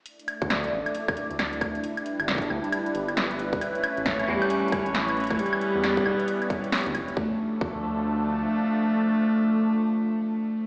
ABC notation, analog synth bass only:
X:1
M:4/4
L:1/16
Q:"Swing 16ths" 1/4=135
K:Dm
V:1 name="Analog synth bass" clef=bass
z3 D,,2 z A,,, z4 D,,4 z | z3 G,,,2 z D,, z3 G,,,4- G,,, z | z3 A,,,2 z E,, z4 A,,,4 z | z3 E,,2 z =B,,, z6 D,, E,,, z |
D,, z3 D,,8 z4 | z16 |]